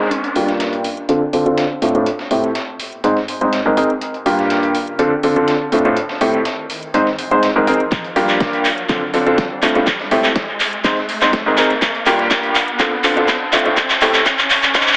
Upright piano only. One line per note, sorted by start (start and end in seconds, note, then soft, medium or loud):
0.36 0.83 G2 medium
0.36 0.83 A#3 medium
0.36 0.83 D4 medium
0.36 0.83 F4 medium
0.36 0.83 G4 medium
1.09 1.20 D3 medium
1.09 1.20 C4 medium
1.09 1.20 D4 medium
1.09 1.20 F4 medium
1.09 1.20 A4 loud
1.33 1.44 D3 medium
1.33 1.44 C4 medium
1.33 1.44 D4 medium
1.33 1.44 F4 medium
1.33 1.44 A4 medium
1.46 1.62 D3 medium
1.46 1.62 C4 medium
1.46 1.62 D4 medium
1.46 1.62 F4 medium
1.46 1.62 A4 medium
1.82 1.93 A2 medium
1.82 1.93 C4 medium
1.82 1.93 D4 medium
1.82 1.93 F4 medium
1.82 1.93 A4 medium
1.95 2.04 A2 medium
1.95 2.04 C4 medium
1.95 2.04 D4 medium
1.95 2.04 F4 medium
1.95 2.04 A4 medium
2.31 2.48 A2 medium
2.31 2.48 C4 medium
2.31 2.47 E4 medium
2.31 2.47 G4 medium
2.31 2.47 A4 medium
3.04 3.15 G#2 medium
3.04 3.15 C4 medium
3.04 3.15 D#4 medium
3.04 3.15 G#4 medium
3.04 3.15 C5 medium
3.41 3.57 G#2 medium
3.41 3.57 C4 medium
3.41 3.57 D#4 medium
3.41 3.57 G#4 medium
3.41 3.57 C5 medium
3.65 3.74 G#2 medium
3.65 3.74 C4 medium
3.65 3.74 D#4 medium
3.65 3.74 G#4 medium
3.65 3.74 A#4 loud
3.77 3.88 C4 loud
3.77 3.88 D#4 medium
3.77 3.88 G#4 medium
3.77 3.88 A#4 loud
4.26 4.73 G2 medium
4.26 4.73 A#3 medium
4.26 4.73 D4 medium
4.26 4.73 F4 medium
4.26 4.73 G4 medium
4.99 5.10 D3 loud
4.99 5.10 C4 medium
4.99 5.10 D4 medium
4.99 5.10 F4 medium
4.99 5.10 A4 loud
5.23 5.34 D3 medium
5.23 5.34 C4 medium
5.23 5.34 D4 medium
5.23 5.34 F4 medium
5.23 5.34 A4 medium
5.36 5.52 D3 medium
5.36 5.52 C4 medium
5.36 5.52 D4 medium
5.36 5.52 F4 medium
5.36 5.52 A4 loud
5.72 5.83 A2 medium
5.72 5.83 C4 medium
5.72 5.83 D4 medium
5.72 5.83 F4 medium
5.72 5.83 A4 medium
5.85 5.95 A2 medium
5.85 5.95 C4 medium
5.85 5.95 D4 medium
5.85 5.95 F4 medium
5.85 5.95 A4 loud
6.21 6.38 A2 medium
6.21 6.38 C4 medium
6.21 6.38 E4 medium
6.21 6.38 G4 medium
6.21 6.38 A4 medium
6.94 7.05 G#2 medium
6.94 7.05 C4 medium
6.94 7.05 D#4 medium
6.94 7.05 G#4 medium
6.94 7.05 C5 medium
7.31 7.47 G#2 medium
7.31 7.47 C4 medium
7.31 7.47 D#4 medium
7.31 7.47 G#4 medium
7.31 7.47 C5 medium
7.56 7.65 G#2 medium
7.56 7.65 C4 medium
7.56 7.65 D#4 medium
7.56 7.65 G#4 medium
7.56 7.65 A#4 medium
7.67 7.78 C4 loud
7.67 7.78 D#4 medium
7.67 7.78 G#4 medium
7.67 7.78 A#4 loud
8.16 8.63 G2 medium
8.16 8.63 A#3 medium
8.16 8.63 D4 medium
8.16 8.63 F4 medium
8.16 8.63 G4 loud
8.89 9.00 D3 loud
8.89 9.00 C4 medium
8.89 9.00 D4 medium
8.89 9.00 F4 medium
8.89 9.00 A4 loud
9.14 9.24 D3 medium
9.14 9.24 C4 medium
9.14 9.24 D4 medium
9.14 9.24 F4 medium
9.14 9.24 A4 medium
9.26 9.42 D3 medium
9.26 9.42 C4 medium
9.26 9.42 D4 medium
9.26 9.42 F4 medium
9.26 9.42 A4 loud
9.62 9.73 A2 medium
9.62 9.73 C4 medium
9.62 9.73 D4 medium
9.62 9.73 F4 medium
9.62 9.73 A4 medium
9.75 9.85 A2 medium
9.75 9.85 C4 medium
9.75 9.85 D4 medium
9.75 9.85 F4 medium
9.75 9.85 A4 loud
10.11 10.28 A2 medium
10.11 10.28 C4 medium
10.11 10.28 E4 medium
10.11 10.28 G4 medium
10.11 10.28 A4 medium
10.84 10.95 G#2 medium
10.84 10.95 C4 medium
10.84 10.95 D#4 medium
10.84 10.95 G#4 medium
10.84 10.95 C5 medium
11.22 11.38 G#2 medium
11.22 11.38 C4 medium
11.22 11.38 D#4 medium
11.22 11.38 G#4 medium
11.22 11.38 C5 medium
11.46 11.55 G#2 medium
11.46 11.55 C4 medium
11.46 11.55 D#4 medium
11.46 11.55 G#4 medium
11.46 11.55 A#4 medium
11.58 11.68 C4 loud
11.58 11.68 D#4 medium
11.58 11.68 G#4 medium
11.58 11.68 A#4 loud
12.06 12.54 G2 medium
12.06 12.54 A#3 medium
12.06 12.54 D4 medium
12.06 12.54 F4 medium
12.06 12.54 G4 loud
12.80 12.90 D3 loud
12.80 12.90 C4 loud
12.80 12.90 D4 medium
12.80 12.90 F4 medium
12.80 12.90 A4 loud
13.04 13.15 D3 medium
13.04 13.15 C4 medium
13.04 13.15 D4 medium
13.04 13.15 F4 medium
13.04 13.15 A4 medium
13.17 13.33 D3 medium
13.17 13.33 C4 medium
13.17 13.33 D4 medium
13.17 13.33 F4 medium
13.17 13.33 A4 loud
13.53 13.64 A2 medium
13.53 13.64 C4 medium
13.53 13.64 D4 medium
13.53 13.64 F4 medium
13.53 13.64 A4 medium
13.66 13.75 A2 medium
13.66 13.75 C4 medium
13.66 13.75 D4 medium
13.66 13.75 F4 medium
13.66 13.75 A4 loud
14.02 14.18 A2 medium
14.02 14.18 C4 medium
14.02 14.18 E4 medium
14.02 14.18 G4 medium
14.02 14.18 A4 loud
14.75 14.85 G#2 medium
14.75 14.85 C4 medium
14.75 14.85 D#4 medium
14.75 14.85 G#4 medium
14.75 14.85 C5 medium